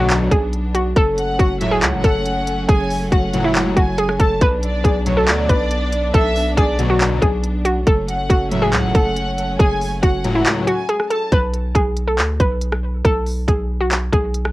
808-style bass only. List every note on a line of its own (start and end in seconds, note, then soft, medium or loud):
0.00 0.29 B1 loud
0.31 0.94 B1 loud
0.96 1.38 F#1 loud
1.39 1.84 F#1 loud
1.83 1.95 C#2 loud
1.93 2.04 F#1 loud
2.04 2.66 F#1 loud
2.69 3.10 F#1 loud
3.12 3.74 F#1 loud
3.77 4.18 F#1 loud
4.20 4.41 F#1 loud
4.42 4.83 B1 loud
4.85 5.29 B1 loud
5.28 5.48 D2 loud
5.49 6.12 B1 loud
6.14 6.56 B1 loud
6.57 7.20 B1 loud
7.22 7.84 B1 loud
7.87 8.28 F#1 loud
8.30 8.75 F#1 loud
8.73 8.85 C#2 loud
8.84 8.94 F#1 loud
8.95 9.57 F#1 loud
9.60 10.01 F#1 loud
10.03 10.44 F#1 loud
11.32 11.74 B1 loud
11.75 12.20 B1 loud
12.19 12.39 D2 loud
12.40 13.02 B1 loud
13.05 13.46 B1 loud
13.48 14.10 B1 loud
14.13 14.52 B1 loud